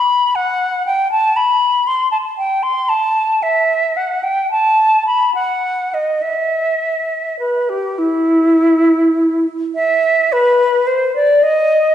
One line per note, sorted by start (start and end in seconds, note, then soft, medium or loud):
0.00 0.37 B5 medium
0.35 0.86 F#5 medium
0.87 1.11 G5 medium
1.12 1.38 A5 medium
1.36 1.89 B5 medium
1.87 2.11 C6 medium
2.11 2.17 A5 medium
2.38 2.64 G5 medium
2.63 2.91 C6 medium
2.89 3.44 A5 medium
3.43 3.98 E5 medium
3.97 4.25 F#5 medium
4.23 4.50 G5 medium
4.51 5.05 A5 medium
5.07 5.34 B5 medium
5.35 5.95 F#5 medium
5.94 6.24 D#5 soft
6.22 7.39 E5 medium
7.39 7.71 B4 soft
7.69 8.00 G4 soft
7.98 9.46 E4 medium
9.75 10.34 E5 medium
10.32 10.88 B4 medium
10.87 11.14 C5 medium
11.16 11.44 D5 medium
11.43 11.95 D#5 medium